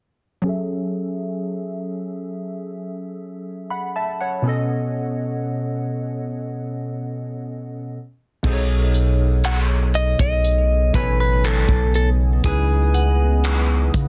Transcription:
0.42 F#3 C#4 G#4
0.47 A4 E5
3.70 F#5 B5
3.96 E5 A5
4.21 C#5 F#5
4.42 B2 B3 C#4
4.47 A4 D#5
8.43 B1 B2 C#3 F#3 A3 B3 D#4 G#4 A4 C5 D#5, kick, crash
8.53 C#5
8.94 closed hi-hat
9.44 F#5, clap, closed hi-hat
9.94 D#5, closed hi-hat
10.19 B1 D#5, kick
10.44 closed hi-hat
10.93 A1 B2 B3 D#4 A4 B4 C#5 G#5, kick, closed hi-hat
11.20 B4
11.44 A4, clap, closed hi-hat
11.68 B1, kick
11.94 A4, closed hi-hat
12.44 C#2 C#3 E3 C#4 D#4 E4 G#4 B4, kick, closed hi-hat
12.94 F#5, closed hi-hat
13.44 clap, closed hi-hat
13.94 C#3, kick, closed hi-hat

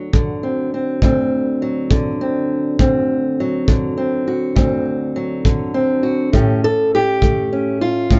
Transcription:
Already playing: D2 D3 F#3 D4 F#4
0.13 D3, kick
0.43 C4
0.74 C4
1.02 D2 C4, kick
1.62 F#3
1.91 D3, kick
2.21 C4
2.79 D2 C4, kick
3.40 F#3
3.68 D3, kick
3.97 C4
4.28 F#4
4.56 D2 C4, kick
5.16 F#3
5.45 D3, kick
5.74 C4
6.03 F#4
6.33 A2 A3 C#4 G4, kick
6.64 A4
6.95 G4
7.22 A3, kick
7.53 C#4
7.81 F4
8.11 A2 C#4, kick

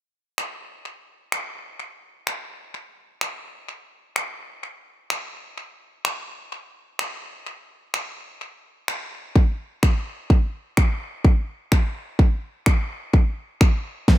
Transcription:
0.38 finger snap
1.32 finger snap
2.27 finger snap
3.21 finger snap
4.16 finger snap
5.10 finger snap
6.05 finger snap
6.99 finger snap
7.94 finger snap
8.88 finger snap
9.36 kick
9.83 finger snap, kick
10.30 kick
10.77 finger snap, kick
11.25 kick
11.72 finger snap, kick
12.19 kick
12.66 finger snap, kick
13.14 kick
13.61 finger snap, kick
14.08 kick, snare

